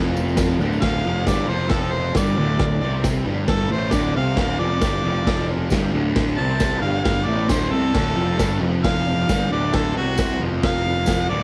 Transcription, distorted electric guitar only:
Already playing: F2 F3
0.61 D2 D3
0.82 D2 D3
1.05 F2 F3
1.27 G2 G3
1.49 F2 F3
2.16 G2 G3
2.38 D2 D3
2.82 C3 C4
3.26 G2 G3
3.71 A2 A3
3.93 D2 D3
4.16 C3 C4
4.36 D2 D3
4.59 F2 F3
4.83 G2 G3
5.04 F2 F3
5.71 G2 G3
5.93 D2 D3
6.37 C3 C4
6.82 G2 G3
7.27 A2 A3
7.49 D2 D3
7.70 C3 C4
7.94 D2 D3
8.16 F2 F3
8.38 G2 G3
8.61 F2 F3
9.29 G2 G3
9.50 D2 D3
9.95 C3 C4
10.40 F2 F3
11.30 D2 D3

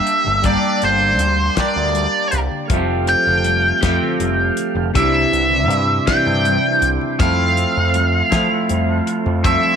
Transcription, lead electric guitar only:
Already playing: E5
0.45 D5
0.84 C5
1.60 D5
3.09 G5
4.96 E5
6.07 G5
7.20 F5
9.45 E5

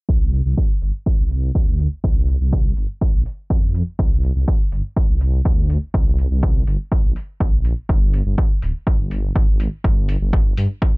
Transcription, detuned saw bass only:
0.09 C2
0.46 C2
0.82 G1
1.19 C2
1.55 D2
2.04 C2
2.41 C2
2.77 G1
3.14 A#1
3.50 F2
3.99 C2
4.36 C2
4.72 G1
5.09 C2
5.45 D2
5.94 C2
6.31 C2
6.67 G1
7.04 A#1
7.40 A#1
7.89 G1
8.26 G1
8.62 D1
8.99 G1
9.36 G#1
9.84 G1
10.21 G1
10.57 G2

